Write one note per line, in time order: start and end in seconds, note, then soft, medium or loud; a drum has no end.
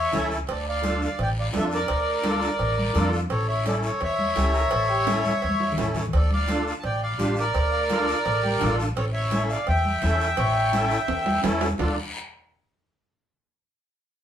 0.00 0.14 C#5 loud
0.00 0.28 C#5 medium
0.00 0.28 E5 loud
0.13 0.42 C#2 medium
0.13 0.38 C#4 medium
0.13 0.38 E4 medium
0.13 0.38 A4 medium
0.13 0.38 A4 loud
0.13 cowbell medium
0.13 high conga medium
0.13 low conga medium
0.13 low timbale medium
0.13 short guiro medium
0.31 short guiro medium
0.47 1.05 D2 loud
0.47 0.66 A4 medium
0.47 0.66 D5 medium
0.47 cowbell loud
0.47 long guiro medium
0.69 1.00 D5 medium
0.69 1.00 F5 medium
0.82 1.08 D4 medium
0.82 1.08 F4 medium
0.82 1.08 A4 medium
0.82 cowbell medium
0.82 high conga medium
0.82 short guiro medium
1.02 1.20 D5 medium
1.02 1.20 F5 medium
1.02 short guiro medium
1.19 1.47 A1 medium
1.19 1.29 D5 medium
1.19 1.29 G5 loud
1.19 cowbell medium
1.19 long guiro medium
1.40 1.47 D5 medium
1.40 1.47 F5 medium
1.53 1.83 F2 medium
1.53 1.78 D4 medium
1.53 1.79 F4 medium
1.53 1.79 A4 medium
1.53 cowbell medium
1.53 high conga medium
1.53 low timbale medium
1.53 short guiro medium
1.57 1.65 A4 medium
1.57 1.64 E5 medium
1.72 3.10 A#4 medium
1.72 3.10 D5 loud
1.72 short guiro medium
1.88 2.46 D2 medium
1.88 cowbell loud
1.88 long guiro medium
2.23 2.49 D4 medium
2.23 2.49 F4 medium
2.23 2.49 A4 loud
2.23 cowbell medium
2.23 high conga medium
2.23 short guiro medium
2.42 short guiro medium
2.59 2.88 A1 loud
2.59 cowbell medium
2.59 long guiro medium
2.78 high conga medium
2.94 3.23 F2 medium
2.94 3.19 D4 medium
2.94 3.20 F4 medium
2.94 3.20 A4 loud
2.94 cowbell medium
2.94 high conga medium
2.94 low conga medium
2.94 short guiro medium
3.13 short guiro medium
3.30 3.87 A1 medium
3.30 3.48 A4 medium
3.30 3.47 C#5 medium
3.30 cowbell loud
3.30 long guiro medium
3.48 3.65 C#5 medium
3.48 3.65 E5 medium
3.65 3.90 C#4 medium
3.65 3.91 E4 medium
3.65 3.91 A4 medium
3.65 3.75 A4 medium
3.65 3.75 D5 medium
3.65 cowbell medium
3.65 high conga medium
3.65 short guiro medium
3.83 4.01 A4 medium
3.83 4.02 C#5 medium
3.83 short guiro medium
4.01 4.30 E2 medium
4.01 5.75 C#5 medium
4.01 5.78 E5 loud
4.01 cowbell medium
4.01 long guiro medium
4.19 high conga medium
4.36 4.65 C#2 medium
4.36 4.61 C#4 medium
4.36 4.61 E4 medium
4.36 4.55 G4 medium
4.36 4.62 A4 medium
4.36 cowbell medium
4.36 high conga medium
4.36 low timbale medium
4.36 short guiro medium
4.54 4.71 A#4 medium
4.54 short guiro medium
4.71 5.29 A1 loud
4.71 4.90 A4 loud
4.71 cowbell loud
4.71 long guiro medium
4.89 5.08 G4 medium
5.07 5.32 C#4 medium
5.07 5.32 E4 medium
5.07 5.32 A4 loud
5.07 5.66 C#5 medium
5.07 cowbell medium
5.07 high conga medium
5.07 high timbale medium
5.07 short guiro medium
5.25 high conga loud
5.25 short guiro medium
5.42 5.71 E2 medium
5.42 cowbell medium
5.42 long guiro medium
5.49 high conga medium
5.60 low timbale medium
5.72 low conga loud
5.77 6.07 A1 medium
5.77 6.02 C#4 medium
5.77 6.02 E4 medium
5.77 6.03 A4 medium
5.77 5.87 C#5 medium
5.77 5.87 E5 medium
5.77 cowbell medium
5.77 low timbale medium
5.77 short guiro medium
5.83 low conga medium
5.95 6.05 A4 medium
5.95 6.05 C#5 medium
5.95 low conga medium
5.95 low timbale medium
5.95 short guiro medium
6.07 low conga medium
6.13 6.70 D2 loud
6.13 6.30 A4 medium
6.13 6.31 D5 medium
6.13 cowbell loud
6.13 long guiro medium
6.31 6.65 D5 medium
6.31 6.65 F5 loud
6.31 high conga medium
6.48 6.73 D4 medium
6.48 6.74 F4 medium
6.48 6.74 A4 medium
6.48 cowbell medium
6.48 high conga medium
6.48 short guiro medium
6.67 6.73 D5 medium
6.67 6.73 F5 medium
6.67 short guiro medium
6.79 6.84 A5 medium
6.79 cowbell medium
6.84 7.12 A1 medium
6.84 7.01 D5 medium
6.84 7.01 G5 loud
6.84 high conga soft
6.84 long guiro medium
7.03 7.35 D5 medium
7.03 7.35 F5 medium
7.19 7.48 A1 loud
7.19 7.44 D4 medium
7.19 7.44 F4 medium
7.19 7.44 G4 medium
7.19 cowbell medium
7.19 high conga medium
7.19 short guiro medium
7.36 8.76 A#4 medium
7.36 8.76 D5 loud
7.36 high conga soft
7.36 short guiro medium
7.54 8.11 D2 loud
7.54 cowbell loud
7.54 long guiro medium
7.72 7.80 F5 loud
7.81 7.90 D5 medium
7.89 8.15 D4 medium
7.89 8.15 F4 medium
7.89 8.15 A4 medium
7.89 8.17 F5 loud
7.89 cowbell medium
7.89 high conga medium
7.89 short guiro medium
8.08 short guiro medium
8.17 8.26 A#4 medium
8.25 8.54 A1 loud
8.25 8.44 A4 medium
8.25 cowbell medium
8.25 high conga soft
8.25 long guiro medium
8.43 8.61 G4 medium
8.43 high conga medium
8.60 8.90 A1 loud
8.60 8.85 D4 medium
8.60 8.86 F4 medium
8.60 8.86 A4 medium
8.60 8.86 A4 loud
8.60 cowbell medium
8.60 high conga medium
8.60 low conga medium
8.60 low timbale medium
8.60 short guiro medium
8.80 high conga soft
8.80 short guiro medium
8.97 9.53 A1 loud
8.97 9.05 A4 medium
8.97 9.05 C#5 medium
8.97 cowbell loud
8.97 long guiro medium
9.13 9.47 C#5 medium
9.13 9.50 E5 medium
9.31 9.57 C#4 medium
9.31 9.57 E4 medium
9.31 9.57 A4 medium
9.31 cowbell medium
9.31 high conga loud
9.31 short guiro medium
9.49 9.67 D5 medium
9.49 9.67 F5 medium
9.49 short guiro medium
9.67 9.96 E2 loud
9.67 11.41 E5 medium
9.67 11.40 G5 loud
9.67 cowbell medium
9.67 high conga soft
9.67 long guiro medium
9.85 high conga medium
10.02 10.31 E2 loud
10.02 10.27 C#4 medium
10.02 10.27 E4 medium
10.02 10.27 A4 medium
10.02 10.39 E5 medium
10.02 cowbell medium
10.02 high conga medium
10.02 short guiro medium
10.20 short guiro medium
10.37 10.94 A1 loud
10.37 10.74 C#5 loud
10.37 cowbell loud
10.37 long guiro medium
10.73 10.98 C#4 medium
10.73 10.98 E4 medium
10.73 10.98 A4 loud
10.73 11.40 E5 loud
10.73 cowbell medium
10.73 high conga loud
10.73 short guiro medium
10.90 short guiro medium
11.08 11.37 E2 loud
11.08 cowbell medium
11.08 high conga soft
11.08 high timbale medium
11.08 long guiro medium
11.26 high conga medium
11.26 low timbale loud
11.43 11.72 E2 loud
11.43 11.68 C#4 loud
11.43 11.68 E4 medium
11.43 11.68 A4 loud
11.43 cowbell medium
11.43 high conga medium
11.43 low conga medium
11.43 low timbale medium
11.43 short guiro medium
11.61 high conga soft
11.61 low timbale loud
11.61 short guiro medium
11.78 11.96 D2 loud
11.78 11.96 D4 medium
11.78 11.95 F4 medium
11.78 11.95 A4 medium
11.78 11.96 D5 medium
11.78 11.96 F5 medium
11.78 low conga medium
11.78 low timbale loud
11.78 long guiro loud